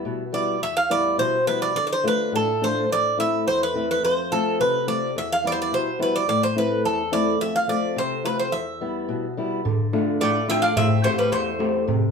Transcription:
Already playing: steel-string acoustic guitar G3 B3 E4, bouzouki E5
0.05 steel-string acoustic guitar B2
0.33 steel-string acoustic guitar G3 B3 E4, bouzouki D5
0.62 steel-string acoustic guitar E2, bouzouki E5
0.77 bouzouki F5
0.90 steel-string acoustic guitar G3 B3 E4, bouzouki D5
1.18 steel-string acoustic guitar B2, bouzouki C5
1.47 steel-string acoustic guitar G3 B3 E4, bouzouki B4
1.62 bouzouki D5
1.75 steel-string acoustic guitar D3, bouzouki D5
1.87 bouzouki D5
1.93 bouzouki C5
2.03 steel-string acoustic guitar A3 D4 F4
2.08 bouzouki B4
2.32 steel-string acoustic guitar A2, bouzouki A4
2.61 steel-string acoustic guitar A3 D4 F4, bouzouki C5
2.90 steel-string acoustic guitar A2, bouzouki D5
3.17 steel-string acoustic guitar A3 C4 E4, bouzouki E5
3.47 steel-string acoustic guitar E2, bouzouki C5
3.63 bouzouki B4
3.74 steel-string acoustic guitar A3 C4 E4
3.91 bouzouki B4
4.03 steel-string acoustic guitar F2, bouzouki C5
4.31 steel-string acoustic guitar A3 C4 F4, bouzouki A4
4.60 steel-string acoustic guitar C3, bouzouki B4
4.87 steel-string acoustic guitar A3 C4 F4, bouzouki D5
5.16 steel-string acoustic guitar E2, bouzouki E5
5.33 bouzouki F5
5.44 steel-string acoustic guitar G3 B3 E4, bouzouki D5
5.52 bouzouki C5
5.62 bouzouki D5
5.72 steel-string acoustic guitar B2, bouzouki C5
5.99 steel-string acoustic guitar G3 B3 E4, bouzouki B4
6.16 bouzouki D5
6.28 steel-string acoustic guitar A2, bouzouki D5
6.43 bouzouki C5
6.55 steel-string acoustic guitar A3 C4 E4, bouzouki B4
6.84 steel-string acoustic guitar E2, bouzouki A4
7.12 steel-string acoustic guitar A3 C4 E4, bouzouki D5
7.40 steel-string acoustic guitar F2, bouzouki E5
7.56 bouzouki F5
7.68 steel-string acoustic guitar A3 C4 F4, bouzouki D5
7.96 steel-string acoustic guitar C3, bouzouki C5
8.24 steel-string acoustic guitar A3 C4 F4, bouzouki B4
8.39 bouzouki C5
8.52 steel-string acoustic guitar E2, bouzouki E5
8.81 steel-string acoustic guitar G3 B3 E4
9.09 steel-string acoustic guitar B2
9.37 steel-string acoustic guitar G3 B3 E4
9.65 steel-string acoustic guitar D3, darbuka dum
9.80 darbuka tek
9.93 steel-string acoustic guitar A3 D4 F4, darbuka tek
10.20 steel-string acoustic guitar A2, mandolin A3, bouzouki D5, darbuka tek
10.35 darbuka tek
10.48 steel-string acoustic guitar A3 D4 F4, mandolin C4, bouzouki E5, darbuka tek
10.62 mandolin D4, bouzouki F5
10.77 steel-string acoustic guitar A2, mandolin C4, bouzouki E5, darbuka dum
10.90 darbuka tek
11.04 mandolin A3, steel-string acoustic guitar A3 C4 G4, bouzouki C5, darbuka tek
11.18 mandolin G3, bouzouki B4
11.32 steel-string acoustic guitar E2, mandolin A3, bouzouki C5, darbuka tek
11.46 darbuka tek
11.59 steel-string acoustic guitar A3 C4 G4, darbuka tek
11.88 steel-string acoustic guitar C3, darbuka dum
12.03 darbuka tek

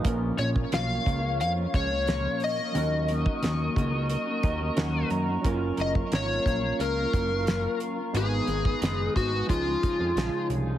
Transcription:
Already playing: synth keys D#4 B4
0.01 analog synth bass A#1, clean electric guitar A#2 F3, synth keys F3 A#3 C#4, ambient pad A#4 F5 C#6, kick, closed hi-hat
0.06 clean electric guitar A#3 C#4 F4, synth keys A#4, ambient pad C#5
0.37 analog synth bass A#1, clean electric guitar F3 A#3 C#4, electric slide guitar C#5, snare, closed hi-hat
0.41 clean electric guitar F4
0.55 clean electric guitar A#3 C#4 F4, kick
0.71 analog synth bass B1, clean electric guitar A#2 F3 A#3 C#4 F4, electric slide guitar F5, snare, closed hi-hat
1.04 analog synth bass C#2, clean electric guitar F3 A#3 C#4 F4, kick, closed hi-hat
1.22 clean electric guitar A#3 C#4 F4
1.40 analog synth bass F2, electric slide guitar F5, closed hi-hat
1.56 clean electric guitar A#3 C#4 F4
1.73 analog synth bass C#2, clean electric guitar F3 A#3 C#4 F4, electric slide guitar C#5, kick, closed hi-hat
1.90 clean electric guitar A#3 C#4 F4
2.07 clean electric guitar A#2 F3 A#3 C#4 F4, snare, closed hi-hat
2.40 electric slide guitar D#5, open hi-hat
2.59 clean electric guitar A#3 C#4 F4
2.72 analog synth bass D#2, clean electric guitar D#3, synth keys F#3 C#4 D#4, ambient pad D#5 A#5, closed hi-hat
2.76 clean electric guitar A#3 C#4 F#4, synth keys A#4
3.08 clean electric guitar D#3 A#3 C#4, closed hi-hat
3.14 clean electric guitar F#4
3.26 clean electric guitar C#4 F#4, kick
3.31 clean electric guitar A#3
3.42 analog synth bass D#2, clean electric guitar D#3 A#3 C#4 F#4, snare, closed hi-hat
3.76 analog synth bass C#2, clean electric guitar D#3 A#3 C#4 F#4, kick, closed hi-hat
3.92 clean electric guitar C#4 F#4
3.96 clean electric guitar A#3
4.10 closed hi-hat
4.26 clean electric guitar C#4 F#4
4.30 clean electric guitar A#3
4.43 analog synth bass D#2, clean electric guitar D#3 A#3 C#4 F#4, synth keys D#5, kick, closed hi-hat
4.59 clean electric guitar A#3 C#4 F#4
4.76 analog synth bass D#2, clean electric guitar D#3 A#3 C#4 F#4, synth keys F#3 C#4 D#4 A#4 F#5, snare, closed hi-hat
5.10 analog synth bass F#2, synth keys A#5, closed hi-hat
5.28 clean electric guitar A#3 C#4 F#4
5.41 analog synth bass F#1, synth keys F#3 C#4, clean electric guitar F#3 A#3, ambient pad F5, kick, closed hi-hat
5.45 clean electric guitar C#4 F4, synth keys F4 A#4
5.77 analog synth bass F#1, clean electric guitar F#3 A#3 C#4 F4, electric slide guitar D#5, snare, closed hi-hat
5.95 clean electric guitar A#3 C#4 F4, kick
6.12 analog synth bass G#1, clean electric guitar F#3 A#3 C#4 F4, electric slide guitar C#5, snare, closed hi-hat
6.46 analog synth bass A#1, clean electric guitar F#3 A#3 C#4 F4, kick, closed hi-hat
6.62 clean electric guitar C#4 F4
6.79 analog synth bass C#2, electric slide guitar A#4, closed hi-hat
6.95 clean electric guitar A#3 C#4 F4
7.13 analog synth bass F#1, clean electric guitar F#3 A#3 C#4 F4, kick, closed hi-hat
7.30 clean electric guitar A#3 C#4 F4
7.47 clean electric guitar F#3 A#3 C#4 F4, snare, closed hi-hat
7.80 closed hi-hat
7.97 clean electric guitar A#3 C#4 F4
8.13 analog synth bass G#1, clean electric guitar G#2 D#3 G#3 B3 D#4, synth keys G#3 B3 D#4, electric slide guitar G#4, ambient pad B4 D#5 G#5 D#6, closed hi-hat
8.18 synth keys B4
8.47 analog synth bass G#1, clean electric guitar D#3 G#3 B3, closed hi-hat
8.52 clean electric guitar D#4
8.65 clean electric guitar B3 D#4, kick
8.69 clean electric guitar G#3
8.81 analog synth bass F#1, clean electric guitar G#2 D#3 G#3 B3 D#4, snare, closed hi-hat
9.15 analog synth bass G#1, clean electric guitar D#3 G#3 B3, electric slide guitar F#4, kick, closed hi-hat
9.20 clean electric guitar D#4
9.32 clean electric guitar B3 D#4
9.36 clean electric guitar G#3
9.47 analog synth bass C#2, clean electric guitar C#3 F3 G#3, synth keys F3 C#4 D#4, electric slide guitar F4, ambient pad G#5, kick, closed hi-hat
9.51 clean electric guitar D#4, synth keys G#4, ambient pad C#5 F5
9.66 clean electric guitar F3 G#3 D#4
9.82 analog synth bass F2, clean electric guitar C#3 F3 G#3 D#4, kick, closed hi-hat
9.98 analog synth bass F2, clean electric guitar F3 G#3 D#4
10.16 analog synth bass A#1, clean electric guitar C#3 F3 G#3 D#4, snare, closed hi-hat
10.50 analog synth bass C2, closed hi-hat
10.66 clean electric guitar F3 G#3 D#4

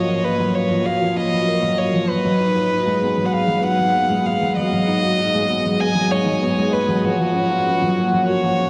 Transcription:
Already playing: felt piano F3 F#3 A#3 C#4 F#4, violin C#5
0.08 felt piano F4
0.24 felt piano A#3, violin B4
0.39 felt piano F#3
0.55 felt piano A#3, violin C#5
0.70 felt piano F3
0.85 felt piano F#4, violin F5
1.00 felt piano F3
1.16 felt piano C#4, violin D#5
1.32 felt piano F3
1.47 felt piano A#3
1.62 felt piano F#3
1.78 felt piano A#3, violin C#5
1.94 felt piano F3
2.09 felt piano F#3, violin B4
2.25 felt piano F#3
2.40 felt piano D#4
2.56 felt piano F#4
2.71 felt piano D#4
2.86 felt piano G#3
3.02 felt piano B3
3.17 felt piano F#3
3.26 violin F#5
3.33 felt piano G#4, violin F5
3.48 felt piano F#3
3.63 felt piano D#4, violin F#5
3.79 felt piano F#3
3.94 felt piano B3
4.10 felt piano G#3
4.25 felt piano B3, violin F5
4.41 felt piano F#3
4.56 felt piano F#3, violin D#5
4.72 felt piano F#3
4.88 felt piano D#4
5.03 felt piano F#4
5.18 felt piano D#4
5.34 felt piano G#3
5.49 felt piano B3
5.65 felt piano F#3
5.80 felt piano G#4, violin G#5
5.95 felt piano F#3
6.11 felt piano D#4, violin C#5
6.26 felt piano F#3
6.42 felt piano B3
6.58 felt piano G#3
6.73 felt piano B3, violin B4
6.88 felt piano F#3
7.04 felt piano F3, violin F#4
7.20 felt piano F3
7.35 felt piano C#4
7.51 felt piano F4
7.67 felt piano C#4
7.82 felt piano F#3
7.97 felt piano A#3
8.13 felt piano F3
8.28 felt piano F#4, violin C#5
8.44 felt piano F3
8.59 felt piano C#4

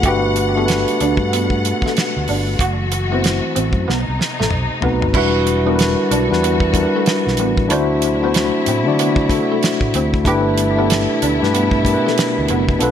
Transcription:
Already playing: string section F#5
0.02 fingered electric bass G1, string section B2 A3, tine electric piano A3 D4 F#4, clean electric guitar G4, kick, closed hi-hat
0.07 tine electric piano G4 B4
0.36 muted clean electric guitar stroke, closed hi-hat
0.55 tine electric piano A3 D4 F#4 G4 A4, clean electric guitar B3
0.66 tine electric piano B4, closed hi-hat
0.70 snare
0.88 closed hi-hat
1.00 fingered electric bass D2, clean electric guitar D4, closed hi-hat
1.17 fingered electric bass G2, kick
1.33 clean electric guitar B3, closed hi-hat
1.50 kick
1.65 muted clean electric guitar stroke, closed hi-hat
1.82 kick
1.86 clean electric guitar A3, snare
1.97 snare, closed hi-hat
2.17 fingered electric bass D2
2.28 fingered electric bass G1, clean electric guitar D4, open hi-hat
2.58 fingered electric bass F#1, string section E3 F#4, clean electric guitar F#4, kick, closed hi-hat
2.92 muted clean electric guitar stroke, closed hi-hat
3.10 tine electric piano A3 C4 E4 F#4, clean electric guitar B3
3.14 tine electric piano C5
3.24 snare, closed hi-hat
3.56 fingered electric bass A1, clean electric guitar C4, closed hi-hat
3.73 fingered electric bass F#2, kick
3.86 fingered electric bass B1, string section C3 D#4, clean electric guitar B3, snare
4.08 fingered electric bass C2
4.19 muted clean electric guitar stroke, snare
4.40 fingered electric bass A1, clean electric guitar A3, snare
4.51 fingered electric bass B1, mid tom
4.81 fingered electric bass B1, tine electric piano A3 C4 D#4 F#4, clean electric guitar B3, floor tom
4.85 tine electric piano B4
5.02 fingered electric bass G1, floor tom
5.13 fingered electric bass E1, string section D3 G3 F#4, tine electric piano G3 D4 E4 F#4, clean electric guitar E4, kick, crash
5.18 tine electric piano B4
5.47 muted clean electric guitar stroke, closed hi-hat
5.65 tine electric piano G3 D4 E4 F#4, clean electric guitar B3
5.69 tine electric piano A#4
5.76 tine electric piano B4, closed hi-hat
5.81 snare
6.11 fingered electric bass B1, clean electric guitar D4, closed hi-hat
6.29 fingered electric bass E2, tine electric piano G3 D4 E4 F#4
6.33 tine electric piano B4, snare
6.43 clean electric guitar B3, closed hi-hat
6.60 kick
6.72 tine electric piano G3 D4 E4 F#4 A#4, kick, closed hi-hat
6.76 muted clean electric guitar stroke
6.83 tine electric piano B4
6.96 clean electric guitar A3
7.06 snare, closed hi-hat
7.27 fingered electric bass B1, snare
7.37 fingered electric bass A1, clean electric guitar B3, closed hi-hat
7.57 kick
7.67 fingered electric bass D2, string section C3 F#3 E4, tine electric piano A3 D4 E4 F#4, closed hi-hat
7.72 clean electric guitar D4, tine electric piano C5
8.02 muted clean electric guitar stroke, closed hi-hat
8.20 tine electric piano A3 D4 E4 F#4, clean electric guitar B3
8.24 tine electric piano C5
8.34 snare, closed hi-hat
8.66 fingered electric bass A2, clean electric guitar C4, closed hi-hat
8.84 fingered electric bass D3, tine electric piano A3 D4 E4 F#4 D5
8.99 clean electric guitar B3, closed hi-hat
9.16 kick
9.29 tine electric piano A3 D4 E4 F#4 A4, kick, closed hi-hat
9.33 muted clean electric guitar stroke
9.52 clean electric guitar A3
9.63 snare, closed hi-hat
9.81 fingered electric bass A2, kick
9.94 fingered electric bass D2, clean electric guitar C4, closed hi-hat
10.14 kick
10.24 fingered electric bass G1, string section B2 A3 E4, tine electric piano A3 D4 E4 G4 B4, clean electric guitar G4, kick, closed hi-hat
10.58 muted clean electric guitar stroke, closed hi-hat
10.76 tine electric piano A3 D4 E4 G4 A4, clean electric guitar B3
10.90 snare, closed hi-hat
11.22 fingered electric bass D2, clean electric guitar D4, closed hi-hat
11.39 fingered electric bass G2, tine electric piano A3 D4 E4 G4
11.43 tine electric piano B4, snare
11.54 clean electric guitar B3, closed hi-hat
11.71 kick
11.83 tine electric piano A3 D4 E4 G4 A#4, kick, closed hi-hat
11.87 muted clean electric guitar stroke
11.94 tine electric piano B4
12.06 clean electric guitar A3, snare
12.18 snare, closed hi-hat
12.38 fingered electric bass D2
12.48 fingered electric bass F#1, clean electric guitar B3, closed hi-hat
12.69 kick
12.79 fingered electric bass B1, string section A3 D4, tine electric piano B3 D4 F4 A4, clean electric guitar B3, closed hi-hat
12.83 tine electric piano B4

